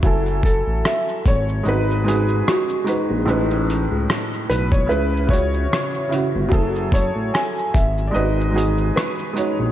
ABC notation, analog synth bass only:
X:1
M:4/4
L:1/16
Q:"Swing 16ths" 1/4=74
K:F#dor
V:1 name="Analog synth bass" clef=bass
F,,,3 A,,, z2 G,,,2 G,,,4 z3 ^A,,, | A,,,3 C,, z2 B,,,2 C,,4 z3 =G,,, | F,,,3 A,,, z2 G,,,2 G,,,4 z3 ^A,,, |]